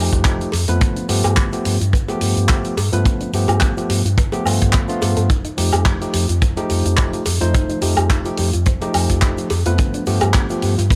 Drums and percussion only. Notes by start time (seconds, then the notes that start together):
0.12 kick, closed hi-hat, shaker
0.25 kick, clap, closed hi-hat, shaker
0.41 closed hi-hat, shaker
0.52 open hi-hat, cowbell, shaker
0.68 closed hi-hat, shaker
0.81 kick, closed hi-hat, shaker
0.96 closed hi-hat, shaker
1.09 open hi-hat, shaker
1.24 closed hi-hat, cowbell, high woodblock, shaker
1.37 kick, clap, closed hi-hat, shaker
1.52 closed hi-hat, shaker
1.65 open hi-hat, shaker
1.80 closed hi-hat, shaker
1.93 kick, closed hi-hat, shaker
2.08 closed hi-hat, cowbell, shaker
2.21 open hi-hat, shaker
2.37 closed hi-hat, shaker
2.49 kick, clap, closed hi-hat, shaker
2.64 closed hi-hat, shaker
2.77 open hi-hat, cowbell, shaker
2.92 closed hi-hat, shaker
3.05 kick, closed hi-hat, shaker
3.20 closed hi-hat, shaker
3.33 open hi-hat, shaker
3.48 closed hi-hat, cowbell, high woodblock, shaker
3.60 kick, clap, closed hi-hat, shaker
3.77 closed hi-hat, shaker
3.90 open hi-hat, shaker
4.05 closed hi-hat, shaker
4.18 kick, closed hi-hat, shaker
4.32 closed hi-hat, cowbell, shaker
4.46 open hi-hat, high woodblock, shaker
4.61 kick, closed hi-hat, shaker
4.73 kick, clap, closed hi-hat, shaker
4.88 closed hi-hat, shaker
5.02 open hi-hat, cowbell, shaker
5.16 closed hi-hat, shaker
5.30 kick, closed hi-hat, shaker
5.44 closed hi-hat, shaker
5.58 open hi-hat, shaker
5.73 closed hi-hat, cowbell, high woodblock, shaker
5.85 kick, clap, closed hi-hat, shaker
6.01 closed hi-hat, shaker
6.13 open hi-hat, shaker
6.29 closed hi-hat, shaker
6.42 kick, closed hi-hat, shaker
6.57 closed hi-hat, cowbell, shaker
6.69 open hi-hat, shaker
6.85 closed hi-hat, shaker
6.97 kick, clap, closed hi-hat, shaker
7.13 closed hi-hat, shaker
7.25 open hi-hat, cowbell, shaker
7.41 closed hi-hat, shaker
7.54 kick, closed hi-hat, shaker
7.69 closed hi-hat, shaker
7.82 open hi-hat, shaker
7.97 closed hi-hat, cowbell, high woodblock, shaker
8.10 kick, clap, closed hi-hat, shaker
8.25 closed hi-hat, shaker
8.37 open hi-hat, shaker
8.53 closed hi-hat, shaker
8.66 kick, closed hi-hat, shaker
8.81 closed hi-hat, cowbell, shaker
8.94 open hi-hat, high woodblock, shaker
9.09 kick, closed hi-hat, shaker
9.22 kick, clap, closed hi-hat, shaker
9.37 closed hi-hat, shaker
9.50 open hi-hat, cowbell, shaker
9.65 closed hi-hat, shaker
9.78 kick, closed hi-hat, shaker
9.94 closed hi-hat, shaker
10.06 open hi-hat, shaker
10.21 closed hi-hat, cowbell, high woodblock, shaker
10.34 kick, clap, closed hi-hat, shaker
10.49 closed hi-hat, shaker
10.62 open hi-hat, shaker
10.78 closed hi-hat, shaker
10.90 kick, closed hi-hat, shaker